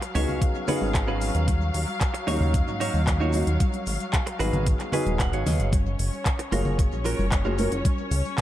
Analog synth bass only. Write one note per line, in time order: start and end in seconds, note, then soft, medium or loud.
0.15 0.26 C#2 loud
0.28 0.51 C#2 medium
0.82 1.31 G#1 loud
1.35 1.71 D#2 medium
1.74 1.86 D#2 medium
2.28 2.39 D#2 loud
2.41 2.63 D#2 medium
2.67 2.89 G#2 medium
2.94 3.43 D#2 medium
3.47 3.58 D#2 medium
3.87 3.98 G#1 medium
4.40 4.51 G#1 loud
4.54 4.75 G#1 medium
5.06 5.32 D#1 medium
5.33 5.44 G#1 medium
5.46 5.61 D#2 medium
5.60 5.96 F#1 medium
5.99 6.10 F#1 medium
6.52 6.63 F#1 loud
6.66 6.88 F#1 medium
6.92 7.14 A#1 medium
7.19 7.68 F#1 medium
7.72 7.83 F#1 medium
8.11 8.22 C#2 loud